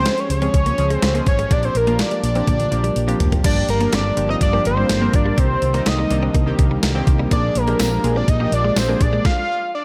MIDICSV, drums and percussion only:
0, 0, Header, 1, 2, 480
1, 0, Start_track
1, 0, Tempo, 483871
1, 1496, Time_signature, 4, 2, 24, 8
1, 9766, End_track
2, 0, Start_track
2, 0, Title_t, "Drums"
2, 54, Note_on_c, 9, 42, 90
2, 57, Note_on_c, 9, 38, 96
2, 154, Note_off_c, 9, 42, 0
2, 156, Note_off_c, 9, 38, 0
2, 175, Note_on_c, 9, 42, 47
2, 275, Note_off_c, 9, 42, 0
2, 298, Note_on_c, 9, 42, 78
2, 398, Note_off_c, 9, 42, 0
2, 414, Note_on_c, 9, 42, 49
2, 514, Note_off_c, 9, 42, 0
2, 535, Note_on_c, 9, 36, 80
2, 535, Note_on_c, 9, 42, 74
2, 634, Note_off_c, 9, 36, 0
2, 635, Note_off_c, 9, 42, 0
2, 655, Note_on_c, 9, 42, 47
2, 754, Note_off_c, 9, 42, 0
2, 774, Note_on_c, 9, 42, 63
2, 874, Note_off_c, 9, 42, 0
2, 897, Note_on_c, 9, 42, 48
2, 996, Note_off_c, 9, 42, 0
2, 1016, Note_on_c, 9, 38, 100
2, 1016, Note_on_c, 9, 42, 82
2, 1115, Note_off_c, 9, 42, 0
2, 1116, Note_off_c, 9, 38, 0
2, 1140, Note_on_c, 9, 42, 44
2, 1239, Note_off_c, 9, 42, 0
2, 1254, Note_on_c, 9, 42, 71
2, 1256, Note_on_c, 9, 36, 89
2, 1353, Note_off_c, 9, 42, 0
2, 1356, Note_off_c, 9, 36, 0
2, 1376, Note_on_c, 9, 42, 43
2, 1476, Note_off_c, 9, 42, 0
2, 1496, Note_on_c, 9, 36, 111
2, 1496, Note_on_c, 9, 42, 91
2, 1595, Note_off_c, 9, 36, 0
2, 1595, Note_off_c, 9, 42, 0
2, 1616, Note_on_c, 9, 42, 45
2, 1715, Note_off_c, 9, 42, 0
2, 1736, Note_on_c, 9, 42, 65
2, 1835, Note_off_c, 9, 42, 0
2, 1856, Note_on_c, 9, 42, 42
2, 1955, Note_off_c, 9, 42, 0
2, 1973, Note_on_c, 9, 42, 82
2, 1976, Note_on_c, 9, 38, 103
2, 2072, Note_off_c, 9, 42, 0
2, 2075, Note_off_c, 9, 38, 0
2, 2095, Note_on_c, 9, 42, 46
2, 2194, Note_off_c, 9, 42, 0
2, 2218, Note_on_c, 9, 42, 76
2, 2317, Note_off_c, 9, 42, 0
2, 2335, Note_on_c, 9, 42, 48
2, 2434, Note_off_c, 9, 42, 0
2, 2455, Note_on_c, 9, 36, 74
2, 2455, Note_on_c, 9, 42, 78
2, 2456, Note_on_c, 9, 48, 50
2, 2554, Note_off_c, 9, 36, 0
2, 2554, Note_off_c, 9, 42, 0
2, 2555, Note_off_c, 9, 48, 0
2, 2576, Note_on_c, 9, 42, 46
2, 2577, Note_on_c, 9, 48, 44
2, 2675, Note_off_c, 9, 42, 0
2, 2676, Note_off_c, 9, 48, 0
2, 2697, Note_on_c, 9, 42, 65
2, 2796, Note_off_c, 9, 42, 0
2, 2817, Note_on_c, 9, 42, 46
2, 2917, Note_off_c, 9, 42, 0
2, 2937, Note_on_c, 9, 42, 82
2, 3036, Note_off_c, 9, 42, 0
2, 3060, Note_on_c, 9, 42, 45
2, 3160, Note_off_c, 9, 42, 0
2, 3176, Note_on_c, 9, 42, 64
2, 3177, Note_on_c, 9, 43, 84
2, 3275, Note_off_c, 9, 42, 0
2, 3276, Note_off_c, 9, 43, 0
2, 3297, Note_on_c, 9, 42, 43
2, 3297, Note_on_c, 9, 43, 75
2, 3396, Note_off_c, 9, 43, 0
2, 3397, Note_off_c, 9, 42, 0
2, 3416, Note_on_c, 9, 36, 107
2, 3416, Note_on_c, 9, 42, 88
2, 3416, Note_on_c, 9, 49, 86
2, 3515, Note_off_c, 9, 36, 0
2, 3515, Note_off_c, 9, 42, 0
2, 3515, Note_off_c, 9, 49, 0
2, 3656, Note_on_c, 9, 42, 74
2, 3755, Note_off_c, 9, 42, 0
2, 3775, Note_on_c, 9, 42, 46
2, 3874, Note_off_c, 9, 42, 0
2, 3894, Note_on_c, 9, 42, 87
2, 3896, Note_on_c, 9, 38, 102
2, 3993, Note_off_c, 9, 42, 0
2, 3995, Note_off_c, 9, 38, 0
2, 4137, Note_on_c, 9, 42, 83
2, 4236, Note_off_c, 9, 42, 0
2, 4374, Note_on_c, 9, 36, 82
2, 4376, Note_on_c, 9, 42, 77
2, 4474, Note_off_c, 9, 36, 0
2, 4475, Note_off_c, 9, 42, 0
2, 4616, Note_on_c, 9, 42, 69
2, 4715, Note_off_c, 9, 42, 0
2, 4855, Note_on_c, 9, 38, 99
2, 4855, Note_on_c, 9, 42, 83
2, 4954, Note_off_c, 9, 42, 0
2, 4955, Note_off_c, 9, 38, 0
2, 5094, Note_on_c, 9, 42, 68
2, 5095, Note_on_c, 9, 36, 90
2, 5193, Note_off_c, 9, 42, 0
2, 5194, Note_off_c, 9, 36, 0
2, 5334, Note_on_c, 9, 42, 95
2, 5335, Note_on_c, 9, 36, 109
2, 5433, Note_off_c, 9, 42, 0
2, 5434, Note_off_c, 9, 36, 0
2, 5575, Note_on_c, 9, 42, 72
2, 5674, Note_off_c, 9, 42, 0
2, 5695, Note_on_c, 9, 42, 45
2, 5794, Note_off_c, 9, 42, 0
2, 5813, Note_on_c, 9, 42, 92
2, 5815, Note_on_c, 9, 38, 101
2, 5912, Note_off_c, 9, 42, 0
2, 5915, Note_off_c, 9, 38, 0
2, 6056, Note_on_c, 9, 42, 84
2, 6156, Note_off_c, 9, 42, 0
2, 6294, Note_on_c, 9, 36, 84
2, 6295, Note_on_c, 9, 42, 80
2, 6393, Note_off_c, 9, 36, 0
2, 6394, Note_off_c, 9, 42, 0
2, 6534, Note_on_c, 9, 42, 66
2, 6535, Note_on_c, 9, 36, 83
2, 6634, Note_off_c, 9, 36, 0
2, 6634, Note_off_c, 9, 42, 0
2, 6774, Note_on_c, 9, 38, 108
2, 6774, Note_on_c, 9, 42, 90
2, 6873, Note_off_c, 9, 42, 0
2, 6874, Note_off_c, 9, 38, 0
2, 7014, Note_on_c, 9, 42, 70
2, 7015, Note_on_c, 9, 36, 85
2, 7113, Note_off_c, 9, 42, 0
2, 7114, Note_off_c, 9, 36, 0
2, 7254, Note_on_c, 9, 36, 106
2, 7254, Note_on_c, 9, 42, 94
2, 7353, Note_off_c, 9, 42, 0
2, 7354, Note_off_c, 9, 36, 0
2, 7494, Note_on_c, 9, 42, 76
2, 7593, Note_off_c, 9, 42, 0
2, 7613, Note_on_c, 9, 42, 45
2, 7712, Note_off_c, 9, 42, 0
2, 7732, Note_on_c, 9, 42, 89
2, 7734, Note_on_c, 9, 38, 97
2, 7734, Note_on_c, 9, 54, 90
2, 7831, Note_off_c, 9, 42, 0
2, 7834, Note_off_c, 9, 38, 0
2, 7834, Note_off_c, 9, 54, 0
2, 7977, Note_on_c, 9, 42, 82
2, 8076, Note_off_c, 9, 42, 0
2, 8213, Note_on_c, 9, 36, 84
2, 8215, Note_on_c, 9, 42, 81
2, 8312, Note_off_c, 9, 36, 0
2, 8314, Note_off_c, 9, 42, 0
2, 8455, Note_on_c, 9, 42, 69
2, 8554, Note_off_c, 9, 42, 0
2, 8695, Note_on_c, 9, 38, 102
2, 8695, Note_on_c, 9, 42, 83
2, 8696, Note_on_c, 9, 54, 82
2, 8794, Note_off_c, 9, 38, 0
2, 8794, Note_off_c, 9, 42, 0
2, 8795, Note_off_c, 9, 54, 0
2, 8934, Note_on_c, 9, 42, 68
2, 8935, Note_on_c, 9, 36, 93
2, 9033, Note_off_c, 9, 42, 0
2, 9034, Note_off_c, 9, 36, 0
2, 9175, Note_on_c, 9, 36, 102
2, 9176, Note_on_c, 9, 38, 87
2, 9275, Note_off_c, 9, 36, 0
2, 9275, Note_off_c, 9, 38, 0
2, 9766, End_track
0, 0, End_of_file